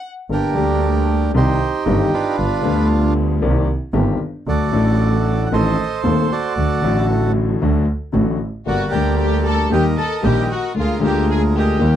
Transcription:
0.29 G1 G2 D3 G3 A#3 D4 G4 A#4
0.53 D2 D3 G3 A#3 G4
1.34 C2 C3 D#3 G3 C4 D#4 G4 C5
1.86 G1 G2 D#3 G3 C4 G4
2.14 D4 F4 B4
2.38 G1 G2 D3 G3 B3 F4
2.62 D2 D3 G3 B3
2.66 F4
3.42 C2 C3 D#3 A#3 C4 G4
3.93 G1 G2 D#3 A#3 C4 G4
4.47 D2 D3 F#3 A3 D4 F#4 A4 D5
4.71 A1 A2 F#3 A3 D4 A4
5.46 F#5
5.52 A1 A2 D#3 A3 C4 A4 C5 D#5
6.03 D#1 D#2 D#3 A3 C4 A4
6.32 F#4 A4 D5
6.56 D2 D3 F#3 A3 F#4
6.81 A1 A2 D3 F#3 A3
6.86 F#4
7.61 D2 D3 F#3 A3 F#4
8.12 A1 A2 D3 F#3 A3 F#4
8.66 G1 G2 D3 G3 A#3 F#4 G4 A#4 D5 F#5
8.90 D2 D3 G3 A#3 G4 G5
8.95 G4
9.16 G4 G5
9.44 A4 A5
9.70 D#2 D#3 G3 A#3 G4 A#4 D#5 G5
9.74 G4
9.98 A4 A5
10.22 A#1 A#2 D#3 G3 A#3 G4 G5
10.51 F#4 F#5
10.74 D2 D3 G#3 A#3 F4
10.80 G#4 A#4 F5
10.99 D2 D3 G#3 A#3 F4 G4
11.07 G5
11.31 G#4 G#5
11.56 G4 A#4 D#5 G5
11.79 D#2 D#3 G3 A#3 G4

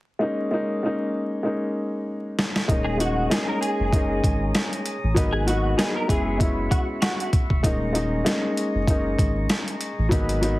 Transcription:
0.19 G#3 A#3 C#4 D#4
0.51 G#3 A#3 C#4 D#4
0.83 G#3 A#3 C#4 D#4
1.43 G#3 A#3 C#4 D#4
2.39 snare
2.56 snare
2.68 D#1 G#3 A#3 C#4 D#4 G#4 C#5 A#5 D#6, kick, closed hi-hat
2.84 G#4
2.98 G#3 A#3 C#4 D#4 F#4, closed hi-hat
3.30 G#3 A#3 C#4 D#4 G#4, snare, closed hi-hat
3.48 A#4
3.61 G#4, closed hi-hat
3.80 F#1
3.92 G#3 A#3 C#4 D#4, kick, closed hi-hat
4.24 G#1, kick, closed hi-hat
4.55 snare, closed hi-hat
4.73 closed hi-hat
4.86 closed hi-hat
5.03 A1
5.14 G#1 F#3 A#3 B3 D#4 G#4 F#5 B5, kick, closed hi-hat
5.32 G#4
5.46 F#3 A#3 B3 D#4 F#4, closed hi-hat
5.77 F#3 A#3 B3 D#4 G#4, snare, closed hi-hat
5.96 A#4
6.08 F#1 G#3 B3 C#4 E4 F#4 G#4 E5 C#6, kick, closed hi-hat
6.38 G#3 B3 C#4 E4, kick, closed hi-hat
6.71 F#4, kick, closed hi-hat
7.02 F#4, snare, closed hi-hat
7.20 closed hi-hat
7.33 kick, closed hi-hat
7.50 E1, kick
7.63 D#1 G#3 A#3 C#4 D#4 G#4 D#5 A#5, kick, closed hi-hat
7.93 G#3 A#3 C#4 D#4, closed hi-hat
8.24 G#3 A#3 C#4 D#4, snare, closed hi-hat
8.57 closed hi-hat
8.75 F#1
8.87 G#3 A#3 C#4 D#4, kick, closed hi-hat
9.19 G#1, kick, closed hi-hat
9.50 snare, closed hi-hat
9.68 closed hi-hat
9.81 closed hi-hat
9.98 A1
10.09 G#1 F#3 A#3 B3 D#4 G#4 D#5 F#5 B5, kick, closed hi-hat
10.29 closed hi-hat
10.41 F#3 A#3 B3 D#4, closed hi-hat

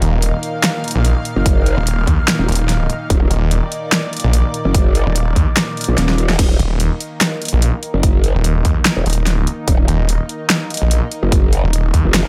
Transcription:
Already playing: A#2 D#3 A#3 D#4 F5
0.02 D#1, closed hi-hat
0.22 closed hi-hat
0.43 closed hi-hat
0.64 snare, closed hi-hat
0.84 closed hi-hat
0.88 closed hi-hat
0.91 closed hi-hat
0.95 A#1
1.05 closed hi-hat
1.25 closed hi-hat
1.36 F#1
1.46 kick, closed hi-hat
1.66 closed hi-hat
1.77 D#1
1.87 closed hi-hat
2.07 D#2, kick, closed hi-hat
2.28 snare, closed hi-hat
2.39 D#1
2.48 D#1, closed hi-hat
2.52 closed hi-hat
2.55 closed hi-hat
2.69 snare, closed hi-hat
2.90 closed hi-hat
3.10 D#1 D5, kick, closed hi-hat
3.31 D#1, closed hi-hat
3.51 closed hi-hat
3.72 closed hi-hat
3.92 snare, closed hi-hat
4.13 closed hi-hat
4.17 closed hi-hat
4.20 closed hi-hat
4.24 A#1
4.33 closed hi-hat
4.54 closed hi-hat
4.65 F#1
4.74 kick, closed hi-hat
4.95 closed hi-hat
5.06 D#1
5.16 closed hi-hat
5.36 D#2, kick, closed hi-hat
5.57 snare, closed hi-hat
5.77 closed hi-hat
5.81 closed hi-hat
5.84 closed hi-hat
5.88 A#1
5.98 D#1, snare, closed hi-hat
6.09 snare
6.18 closed hi-hat
6.30 snare
6.39 D#1 D#3 A#3 D#4, kick, closed hi-hat, crash
6.59 D#1, closed hi-hat
6.80 closed hi-hat
7.00 closed hi-hat
7.21 snare, closed hi-hat
7.42 closed hi-hat
7.45 closed hi-hat
7.48 closed hi-hat
7.53 A#1
7.62 closed hi-hat
7.83 closed hi-hat
7.94 F#1
8.03 kick, closed hi-hat
8.24 closed hi-hat
8.35 D#1
8.44 closed hi-hat
8.65 D#2, kick, closed hi-hat
8.85 snare, closed hi-hat
8.97 D#1
9.06 D#1, closed hi-hat
9.10 closed hi-hat
9.13 closed hi-hat
9.27 snare, closed hi-hat
9.47 closed hi-hat
9.68 D#1, kick, closed hi-hat
9.88 D#1, closed hi-hat
10.09 closed hi-hat
10.29 closed hi-hat
10.50 snare, closed hi-hat
10.70 closed hi-hat
10.74 closed hi-hat
10.77 closed hi-hat
10.82 A#1
10.91 closed hi-hat
11.12 closed hi-hat
11.23 F#1
11.32 kick, closed hi-hat
11.53 closed hi-hat
11.64 D#1
11.73 closed hi-hat
11.94 D#2, kick, closed hi-hat
12.05 F1
12.14 snare, closed hi-hat

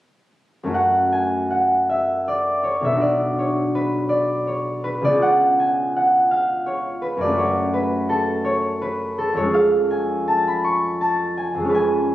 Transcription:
0.63 F#2 A3 C#4
0.69 F#4
0.74 F#5
1.12 G#5
1.51 F#5
1.89 E5
2.28 D5
2.63 C#5
2.81 B1 E5
2.86 B3
2.92 D4
2.96 F#4
3.01 D5
3.38 C#5
3.75 B4
4.09 D5
4.47 C#5
4.84 B4
5.01 C#2 D5
5.07 B3
5.11 C#4
5.17 F4
5.22 F#5
5.60 G#5
5.96 F#5
6.31 F5
6.66 C#5
7.02 B4
7.17 F#2
7.21 A3 D5
7.27 C#4
7.33 F#4
7.38 C#5
7.74 B4
8.09 A4
8.45 C#5
8.82 B4
9.18 A4
9.33 F2 C#5
9.38 G#3
9.44 C#4
9.49 G#4
9.54 F5
9.91 G#5
10.28 A5
10.48 B5
10.64 C#6
11.01 A5
11.37 G#5
11.54 F2
11.59 G#3
11.65 C#4
11.69 B4
11.74 G#5

